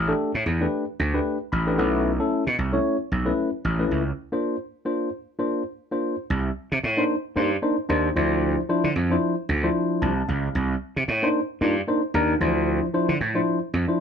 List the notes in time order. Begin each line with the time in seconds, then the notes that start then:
Already playing: A1
0.08 A3 D4 G4 A4
0.34 A2
0.46 E2
0.61 A3 D4 G4 B4
0.99 D2
1.14 A3 D4 G4 B4
1.52 A1 B5
1.67 A3 D4 G4 B4
1.78 B1 A3 C#4 E4 B4 F#5
2.19 A3 C#4 E4 A4
2.47 B2
2.58 C2
2.72 A3 C#4 E4 C#5
3.12 B1
3.25 A3 C#4 E4 B4
3.65 A1
3.79 A3 C#4 E4 B4
3.91 C#2
4.32 A#3 D4 F4 C5
4.85 A#3 D4 F4 C5
5.39 A#3 D4 F4 C5
5.91 A#3 D4 F4 C5
6.30 C2
6.72 C3
6.84 A2
6.97 A#3 D4 D#4 C5
7.36 G2 A#3 D4 D#4 C5
7.62 A#3 D4 D#4 C5
7.89 D#2 A#3 D4 D#4 C5
8.15 D2 F3 D4 E4 C5
8.69 F3 D4 E4 C5
8.84 D3
8.96 F2
9.10 F3 D4 E4 C5
9.49 D2
9.63 F3 D4 E4 C5
10.02 C2 A5
10.28 C#2 F5
10.55 C2
10.96 C3
11.08 A2
11.22 A#3 D4 D#4 C5
11.61 G2 A#3 D4 D#4 F4
11.88 A#3 D4 D#4 C5
12.14 D#2 A#3 D4 D#4 A#4
12.41 D2 E3 D4 E4 C5
12.47 F3
12.94 F3 D4 E4 C5
13.09 D3
13.21 A2
13.35 F3 D4 E4 C5
13.74 F2
13.88 F3 D4 E4 C5